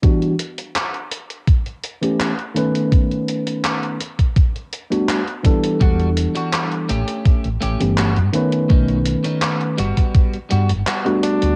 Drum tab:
HH |xxxxxxxxxxxxxxxx|xxxxxxxxxxxxxxxx|xxxxxxxxxxxxxxxx|xxxxxxxxxxxxxxxx|
CP |----x-------x---|----x-------x---|----x-------x---|----x-------x---|
BD |o-------o-------|o------oo-----o-|o-------o-------|o------oo-------|